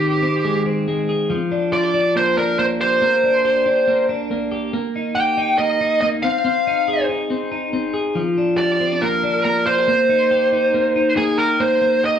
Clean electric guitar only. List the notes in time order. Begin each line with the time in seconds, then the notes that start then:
Already playing: D#3 C4
0.23 C4
0.44 G#3
0.66 C4
0.88 G#3
1.09 G#4
1.30 F3
1.52 D4
1.72 F4
1.84 G4
1.94 D4
2.16 A#3
2.38 D4
2.59 A#3
2.80 G4
3.02 A#3
3.24 D4
3.45 G4
3.66 D4
3.88 A#3
4.09 D4
4.31 A#3
4.52 G4
4.73 A#3
4.96 D#4
5.16 G4
5.38 D#4
5.59 A#3
5.81 D#4
6.02 A#3
6.24 C4
6.45 C4
6.67 D#4
6.88 G#4
7.09 D#4
7.30 C4
7.52 D#4
7.73 C4
7.94 G#4
8.15 F3
8.38 D4
8.59 G4
8.80 C4
8.92 D4
9.02 A#3
9.23 D4
9.45 A#3
9.67 F4
9.78 G4
9.88 A#3
10.09 D#4
10.31 G4
10.52 D#4
10.74 A#3
10.96 D#4
11.17 A#3
11.39 G4
11.60 A#3
11.82 A#3
12.03 G4